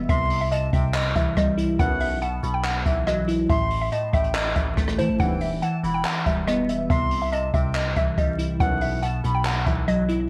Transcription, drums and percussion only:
0.09 kick loud
0.09 closed hi-hat medium
0.30 open hi-hat medium
0.52 closed hi-hat medium
0.73 kick loud
0.73 closed hi-hat medium
0.94 clap loud
0.94 closed hi-hat medium
1.15 kick medium
1.15 closed hi-hat medium
1.37 kick loud
1.37 cross-stick medium
1.37 closed hi-hat medium
1.58 closed hi-hat medium
1.79 kick loud
1.79 closed hi-hat medium
2.00 open hi-hat medium
2.22 closed hi-hat medium
2.43 closed hi-hat medium
2.64 clap loud
2.64 closed hi-hat medium
2.85 kick medium
2.85 closed hi-hat medium
3.07 cross-stick medium
3.07 closed hi-hat medium
3.28 closed hi-hat medium
3.50 kick loud
3.50 closed hi-hat medium
3.70 open hi-hat medium
3.92 closed hi-hat medium
4.13 kick loud
4.13 closed hi-hat medium
4.24 closed hi-hat soft
4.34 clap loud
4.34 closed hi-hat medium
4.56 kick medium
4.56 closed hi-hat medium
4.77 kick loud
4.77 cross-stick medium
4.77 closed hi-hat medium
4.88 cross-stick medium
4.99 closed hi-hat medium
5.20 kick loud
5.20 closed hi-hat medium
5.41 open hi-hat medium
5.62 closed hi-hat medium
5.84 closed hi-hat medium
6.05 clap loud
6.05 closed hi-hat medium
6.26 kick medium
6.26 closed hi-hat medium
6.47 cross-stick medium
6.47 closed hi-hat medium
6.69 closed hi-hat medium
6.90 kick loud
6.90 closed hi-hat medium
7.11 open hi-hat medium
7.33 closed hi-hat medium
7.54 kick loud
7.54 closed hi-hat medium
7.75 clap loud
7.75 closed hi-hat medium
7.96 kick medium
7.96 closed hi-hat medium
8.18 kick loud
8.18 closed hi-hat medium
8.39 closed hi-hat medium
8.60 kick loud
8.60 closed hi-hat medium
8.81 open hi-hat medium
9.03 closed hi-hat medium
9.24 closed hi-hat medium
9.45 clap loud
9.45 closed hi-hat medium
9.66 kick medium
9.66 closed hi-hat medium
9.88 closed hi-hat medium
10.09 closed hi-hat medium

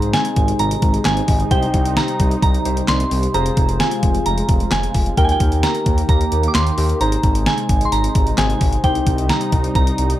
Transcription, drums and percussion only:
0.02 closed hi-hat medium
0.13 snare loud
0.13 closed hi-hat medium
0.25 closed hi-hat soft
0.36 kick medium
0.36 closed hi-hat medium
0.48 closed hi-hat medium
0.59 closed hi-hat medium
0.71 closed hi-hat medium
0.82 kick loud
0.82 closed hi-hat medium
0.94 closed hi-hat soft
1.05 snare loud
1.05 clap medium
1.05 closed hi-hat medium
1.17 closed hi-hat soft
1.28 kick medium
1.28 open hi-hat medium
1.40 closed hi-hat soft
1.51 kick loud
1.51 closed hi-hat medium
1.63 closed hi-hat medium
1.74 kick medium
1.74 closed hi-hat medium
1.85 closed hi-hat medium
1.97 snare loud
1.97 closed hi-hat medium
2.08 closed hi-hat soft
2.20 kick medium
2.20 closed hi-hat medium
2.31 closed hi-hat medium
2.42 kick loud
2.42 closed hi-hat medium
2.54 closed hi-hat medium
2.65 closed hi-hat medium
2.77 closed hi-hat soft
2.88 snare loud
2.88 clap medium
2.88 closed hi-hat medium
3.00 closed hi-hat medium
3.11 open hi-hat medium
3.23 closed hi-hat soft
3.34 closed hi-hat medium
3.46 closed hi-hat medium
3.57 kick medium
3.57 closed hi-hat medium
3.69 closed hi-hat medium
3.80 snare loud
3.80 closed hi-hat medium
3.91 closed hi-hat soft
4.03 kick medium
4.03 closed hi-hat medium
4.15 closed hi-hat medium
4.26 closed hi-hat medium
4.38 closed hi-hat medium
4.49 kick loud
4.49 closed hi-hat medium
4.60 closed hi-hat soft
4.71 snare loud
4.71 clap medium
4.71 closed hi-hat medium
4.83 closed hi-hat medium
4.94 kick medium
4.94 open hi-hat medium
5.06 closed hi-hat soft
5.17 kick loud
5.17 closed hi-hat medium
5.29 closed hi-hat medium
5.40 kick medium
5.40 closed hi-hat medium
5.52 closed hi-hat medium
5.63 snare loud
5.63 closed hi-hat medium
5.75 closed hi-hat soft
5.86 kick medium
5.86 closed hi-hat medium
5.98 closed hi-hat medium
6.09 kick loud
6.09 closed hi-hat medium
6.21 closed hi-hat medium
6.32 closed hi-hat medium
6.43 closed hi-hat soft
6.55 snare loud
6.55 clap medium
6.55 closed hi-hat medium
6.67 closed hi-hat soft
6.78 open hi-hat medium
6.89 closed hi-hat soft
7.01 closed hi-hat medium
7.12 closed hi-hat medium
7.23 kick medium
7.23 closed hi-hat medium
7.35 closed hi-hat medium
7.46 snare loud
7.46 closed hi-hat medium
7.58 closed hi-hat soft
7.69 kick medium
7.69 closed hi-hat medium
7.81 closed hi-hat medium
7.92 closed hi-hat medium
8.04 closed hi-hat medium
8.15 kick medium
8.15 closed hi-hat medium
8.27 closed hi-hat medium
8.38 snare loud
8.38 clap medium
8.38 closed hi-hat medium
8.50 closed hi-hat soft
8.61 kick medium
8.61 open hi-hat medium
8.73 closed hi-hat soft
8.84 kick loud
8.84 closed hi-hat medium
8.95 closed hi-hat medium
9.07 kick medium
9.07 closed hi-hat medium
9.18 closed hi-hat medium
9.29 snare loud
9.29 closed hi-hat medium
9.41 closed hi-hat soft
9.52 kick medium
9.52 closed hi-hat medium
9.64 closed hi-hat medium
9.75 kick loud
9.75 closed hi-hat medium
9.87 closed hi-hat medium
9.98 closed hi-hat medium
10.10 closed hi-hat soft

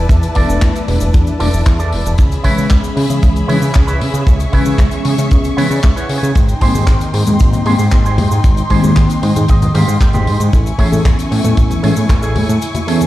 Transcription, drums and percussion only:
0.09 kick loud
0.09 closed hi-hat medium
0.09 cabasa medium
0.23 closed hi-hat soft
0.23 cabasa soft
0.35 kick medium
0.35 open hi-hat medium
0.50 cabasa medium
0.61 kick loud
0.61 clap loud
0.61 closed hi-hat medium
0.61 cabasa medium
0.76 closed hi-hat medium
0.76 cabasa medium
0.88 open hi-hat loud
1.01 closed hi-hat medium
1.01 cabasa medium
1.14 kick loud
1.14 closed hi-hat medium
1.14 cabasa medium
1.27 closed hi-hat soft
1.27 cabasa soft
1.40 open hi-hat loud
1.54 cabasa medium
1.66 kick loud
1.66 clap loud
1.66 closed hi-hat medium
1.66 cabasa medium
1.79 closed hi-hat medium
1.79 cabasa soft
1.92 open hi-hat medium
2.06 closed hi-hat soft
2.06 cabasa medium
2.18 kick loud
2.18 closed hi-hat medium
2.18 cabasa medium
2.32 closed hi-hat medium
2.32 cabasa soft
2.44 kick medium
2.44 open hi-hat loud
2.58 cabasa medium
2.70 kick loud
2.70 clap loud
2.70 closed hi-hat medium
2.70 cabasa medium
2.84 closed hi-hat medium
2.84 cabasa soft
2.97 open hi-hat loud
3.10 closed hi-hat medium
3.10 cabasa medium
3.23 kick loud
3.23 closed hi-hat medium
3.23 cabasa medium
3.36 closed hi-hat soft
3.36 cabasa soft
3.49 open hi-hat loud
3.62 cabasa medium
3.74 kick loud
3.74 clap loud
3.74 closed hi-hat medium
3.74 cabasa medium
3.88 closed hi-hat soft
3.88 cabasa soft
4.01 open hi-hat loud
4.14 closed hi-hat soft
4.14 cabasa medium
4.27 kick loud
4.27 closed hi-hat medium
4.27 cabasa medium
4.40 closed hi-hat medium
4.40 cabasa medium
4.53 kick medium
4.53 open hi-hat medium
4.65 cabasa medium
4.78 kick loud
4.78 clap loud
4.78 closed hi-hat medium
4.78 cabasa medium
4.91 closed hi-hat medium
4.91 cabasa soft
5.05 open hi-hat loud
5.18 closed hi-hat medium
5.18 cabasa medium
5.31 kick loud
5.31 closed hi-hat medium
5.31 cabasa medium
5.44 closed hi-hat soft
5.44 cabasa soft
5.58 open hi-hat loud
5.71 cabasa medium
5.83 kick loud
5.83 clap loud
5.83 closed hi-hat medium
5.83 cabasa medium
5.97 closed hi-hat medium
5.97 cabasa soft
6.09 open hi-hat loud
6.23 closed hi-hat soft
6.23 cabasa medium
6.35 kick loud
6.35 closed hi-hat medium
6.35 cabasa medium
6.48 closed hi-hat soft
6.48 cabasa soft
6.61 kick medium
6.61 open hi-hat loud
6.75 high conga medium
6.75 cabasa medium
6.87 kick loud
6.87 clap loud
6.87 closed hi-hat medium
6.87 cabasa medium
7.01 closed hi-hat medium
7.01 cabasa soft
7.14 open hi-hat loud
7.27 closed hi-hat medium
7.27 low conga medium
7.27 cabasa medium
7.39 kick loud
7.39 closed hi-hat medium
7.39 cabasa medium
7.53 closed hi-hat medium
7.53 low conga medium
7.53 cabasa medium
7.66 open hi-hat loud
7.79 cabasa medium
7.91 kick loud
7.91 clap loud
7.91 closed hi-hat medium
7.91 cabasa medium
8.05 closed hi-hat soft
8.05 cabasa soft
8.18 open hi-hat medium
8.18 high conga medium
8.31 closed hi-hat soft
8.31 cabasa medium
8.44 kick loud
8.44 closed hi-hat medium
8.44 cabasa medium
8.57 closed hi-hat medium
8.57 cabasa soft
8.70 kick medium
8.70 open hi-hat medium
8.84 high conga medium
8.84 cabasa medium
8.96 kick loud
8.96 clap loud
8.96 closed hi-hat medium
8.96 cabasa medium
9.10 closed hi-hat medium
9.10 cabasa medium
9.23 open hi-hat loud
9.36 closed hi-hat medium
9.36 low conga medium
9.36 cabasa medium
9.48 kick loud
9.48 closed hi-hat medium
9.48 cabasa medium
9.62 closed hi-hat medium
9.62 low conga medium
9.62 cabasa soft
9.75 open hi-hat loud
9.89 cabasa medium
10.01 kick loud
10.01 clap loud
10.01 closed hi-hat medium
10.01 cabasa medium
10.13 closed hi-hat soft
10.13 high conga medium
10.13 cabasa medium
10.27 open hi-hat medium
10.40 closed hi-hat soft
10.40 cabasa medium
10.53 kick loud
10.53 closed hi-hat medium
10.53 cabasa medium
10.66 closed hi-hat medium
10.66 cabasa soft
10.79 kick medium
10.79 open hi-hat loud
10.93 high conga medium
10.93 cabasa medium
11.05 kick loud
11.05 clap loud
11.05 closed hi-hat medium
11.05 cabasa medium
11.19 closed hi-hat medium
11.19 cabasa medium
11.32 open hi-hat loud
11.44 closed hi-hat medium
11.44 low conga medium
11.44 cabasa medium
11.57 kick loud
11.57 closed hi-hat medium
11.57 cabasa medium
11.70 closed hi-hat medium
11.70 low conga medium
11.70 cabasa soft
11.84 open hi-hat loud
11.96 cabasa medium
12.09 kick loud
12.09 clap loud
12.09 closed hi-hat medium
12.09 cabasa medium
12.23 closed hi-hat medium
12.23 cabasa medium
12.36 open hi-hat medium
12.36 high conga medium
12.49 closed hi-hat medium
12.49 cabasa medium
12.62 closed hi-hat medium
12.62 cabasa medium
12.75 closed hi-hat medium
12.75 high conga medium
12.75 cabasa medium
12.88 open hi-hat loud
13.01 closed hi-hat medium
13.01 high conga medium
13.01 cabasa medium

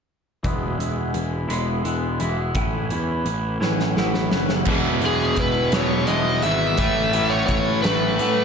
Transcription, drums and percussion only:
0.44 kick medium
0.44 closed hi-hat medium
0.80 closed hi-hat medium
1.14 closed hi-hat soft
1.50 closed hi-hat medium
1.85 closed hi-hat soft
2.20 closed hi-hat medium
2.55 kick medium
2.55 closed hi-hat medium
2.90 closed hi-hat medium
3.26 closed hi-hat medium
3.62 snare medium
3.80 snare soft
3.97 snare medium
4.14 snare soft
4.32 snare medium
4.49 snare medium
4.65 kick loud
4.65 crash medium
5.01 closed hi-hat medium
5.36 kick medium
5.36 closed hi-hat medium
5.72 snare loud
5.72 closed hi-hat medium
6.07 closed hi-hat medium
6.42 closed hi-hat medium
6.77 kick loud
6.77 closed hi-hat medium
7.13 closed hi-hat medium
7.48 kick medium
7.48 closed hi-hat medium
7.84 snare loud
7.84 closed hi-hat medium
8.19 closed hi-hat medium

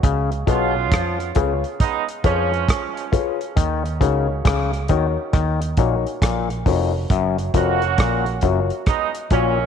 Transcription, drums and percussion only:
0.03 kick loud
0.03 closed hi-hat medium
0.32 closed hi-hat soft
0.47 kick medium
0.47 closed hi-hat medium
0.92 kick loud
0.92 cross-stick loud
0.92 closed hi-hat medium
1.20 closed hi-hat soft
1.35 kick medium
1.35 closed hi-hat medium
1.64 closed hi-hat soft
1.80 kick loud
1.80 closed hi-hat medium
2.09 closed hi-hat medium
2.24 kick medium
2.24 closed hi-hat medium
2.54 closed hi-hat soft
2.69 kick loud
2.69 cross-stick loud
2.69 closed hi-hat loud
2.97 closed hi-hat soft
3.13 kick medium
3.13 closed hi-hat medium
3.41 closed hi-hat soft
3.57 kick loud
3.57 closed hi-hat loud
3.86 closed hi-hat soft
4.01 kick medium
4.01 closed hi-hat medium
4.45 kick loud
4.45 cross-stick loud
4.45 closed hi-hat medium
4.73 closed hi-hat soft
4.88 kick medium
4.88 closed hi-hat medium
5.33 kick loud
5.33 cross-stick medium
5.33 closed hi-hat medium
5.62 closed hi-hat medium
5.77 kick medium
5.77 closed hi-hat medium
6.06 closed hi-hat soft
6.22 kick loud
6.22 cross-stick loud
6.22 closed hi-hat loud
6.50 closed hi-hat soft
6.66 kick medium
6.66 open hi-hat medium
7.10 kick loud
7.10 closed hi-hat medium
7.38 closed hi-hat soft
7.54 kick medium
7.54 closed hi-hat medium
7.82 closed hi-hat soft
7.98 kick loud
7.98 cross-stick loud
7.98 closed hi-hat medium
8.26 closed hi-hat soft
8.41 kick medium
8.41 closed hi-hat medium
8.70 closed hi-hat soft
8.86 kick loud
8.86 cross-stick medium
8.86 closed hi-hat medium
9.15 closed hi-hat medium
9.31 kick loud
9.31 closed hi-hat medium

